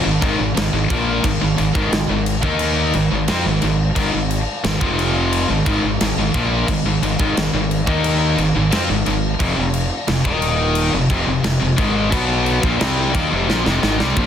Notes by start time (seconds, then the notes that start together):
0.05 G#1 G#2 D#3
0.21 G#1 G#2 D#3, kick, crash
0.40 G#1 G#2 D#3
0.57 G#1 G#2 D#3, snare, crash
0.73 G#1 G#2 D#3
0.90 A#1 A#2 F3 A#3, kick, crash
1.24 G#1 G#2 D#3, kick, crash
1.41 G#1 G#2 D#3
1.58 G#1 G#2 D#3, crash
1.75 G#1 G#2 D#3, kick
1.92 G#1 G#2 D#3, snare, crash
2.09 G#1 G#2 D#3
2.26 crash
2.43 D#2 D#3 A#3 D#4, kick
2.59 crash
2.93 G#1 G#2 D#3, crash
3.12 G#1 G#2 D#3
3.28 F2 F3 C4, snare, crash
3.46 G#1 G#2 D#3
3.62 G#1 G#2 D#3, crash
3.96 G#1 G#2 D#3, kick, crash
4.13 G#1 G#2 D#3
4.31 crash
4.64 G#1 G#2 D#3, snare, crash
4.80 F1 F2 C3 F3, kick
4.99 crash
5.33 crash
5.50 G#1 G#2 D#3
5.66 G#1 G#2 D#3, kick, crash
5.83 G#1 G#2 D#3
6.01 G#1 G#2 D#3, snare, crash
6.17 G#1 G#2 D#3
6.34 A#1 A#2 F3 A#3, kick, crash
6.68 G#1 G#2 D#3, kick, crash
6.85 G#1 G#2 D#3
7.02 G#1 G#2 D#3, crash
7.20 G#2 D#3, kick
7.35 G#1 G#2 D#3, snare, crash
7.54 G#1 G#2 D#3
7.71 crash
7.87 D#2 D#3 A#3 D#4, kick
8.04 crash
8.38 G#1 G#2 D#3, crash
8.56 G#1 G#2 D#3
8.72 F2 F3 C4, snare, crash
8.89 G#1 G#2 D#3
9.06 G#1 G#2 D#3, crash
9.40 F1 F2 C3, kick, crash
9.57 F1 F2 C3
9.74 crash
10.08 F1 F2 C3, snare, crash
10.24 D#1 D#2 A#2 D#3, kick
10.42 crash
10.75 crash
10.93 F1 F2 C3
11.10 F1 F2 C3, kick, crash
11.26 F1 F2 C3
11.44 F1 F2 C3, snare, crash
11.60 F1 F2 C3
11.76 G#1 G#2 D#3 G#3, kick, crash
12.10 B1 B2 F#3 B3, kick, crash
12.46 crash
12.62 A#1 A#2 F3, kick
12.79 C2 C3 G3 C4, snare, crash
13.13 D#2 D#3 A#3, kick, crash
13.30 F1 F2 C3
13.47 A#1 A#2 F3, snare
13.64 F1 F2 C3, snare
13.81 G#1 G#2 D#3, snare
13.98 C2 C3 G3, snare
14.16 A#1 A#2 F3 A#3, kick